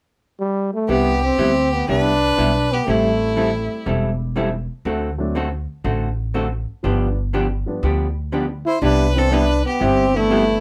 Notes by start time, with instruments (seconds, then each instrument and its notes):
0.40 trombone G3
0.74 trombone A3
0.88 upright bass C2, hollow-body jazz guitar C3 G3 B3 E4 G4, trombone B3, upright piano C4 D4 E4 B4, fiddle G4
1.23 trombone C4, fiddle G4
1.38 upright bass D2, hollow-body jazz guitar C3 G3 B3 E4 G4
1.73 trombone B3, fiddle G4
1.88 upright bass C2, hollow-body jazz guitar C3 G3 B3 E4 G4, trombone D4, fiddle B4
2.38 upright bass B1, hollow-body jazz guitar C3 G3 B3 E4 G4
2.73 trombone B3, fiddle G4
2.87 upright bass A1, hollow-body jazz guitar E3 G3 C4 E4 A4, upright piano G3 A3 C4 E4, trombone A3, fiddle E4
3.36 hollow-body jazz guitar E3 G3 C4 E4 A4
3.86 upright bass E1, hollow-body jazz guitar E3 G3 C4 E4 A4
4.36 hollow-body jazz guitar E3 G3 C4 E4 A4
4.85 upright bass D2, hollow-body jazz guitar D3 A3 C4 F#4 A4
5.18 upright piano F#3 A3 C4 D4
5.35 hollow-body jazz guitar D3 A3 C4 F#4 A4
5.84 upright bass A1, hollow-body jazz guitar D3 A3 C4 F#4 A4
6.34 hollow-body jazz guitar D3 A3 C4 F#4 A4
6.83 upright bass G1, hollow-body jazz guitar D3 F3 B3 D4 G4, upright piano F3 G3 B3 D4
7.33 hollow-body jazz guitar D3 F3 B3 D4 G4
7.66 upright piano F3 G3 B3 D4
7.83 upright bass D2, hollow-body jazz guitar D3 F3 B3 D4 G4
8.32 hollow-body jazz guitar D3 F3 B3 D4 G4
8.66 trombone E4, fiddle C5
8.82 upright bass C2, hollow-body jazz guitar C3 G3 B3 E4 G4, trombone D4, fiddle B4
9.15 upright piano E3 B3 C4 D4, trombone C4, fiddle A4
9.31 hollow-body jazz guitar C3 G3 B3 E4 G4, trombone D4, fiddle B4
9.66 trombone B3, fiddle G4
9.80 upright bass G1, hollow-body jazz guitar C3 G3 B3 E4 G4, trombone C4, fiddle G4
10.14 upright piano E3 B3 C4 D4, trombone A3, fiddle E4
10.30 hollow-body jazz guitar C3 G3 B3 E4 G4